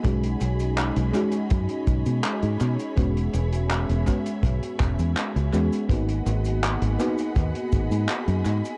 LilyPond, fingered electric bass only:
\new Staff \with { instrumentName = "Fingered electric bass" } { \clef bass \time 4/4 \key gis \minor \tempo 4 = 82 b,,8 b,,8. b,,16 r8 fis,16 r16 b,,16 b,16 r16 gis,16 b,16 r16 | e,,8 e,,8. e,,16 r8 b,,16 r16 e,,16 e,16 r16 cis,16 e,16 r16 | gis,,8 gis,,8. gis,,16 r8 dis,16 r16 gis,,16 gis,16 r16 fis,16 gis,16 r16 | }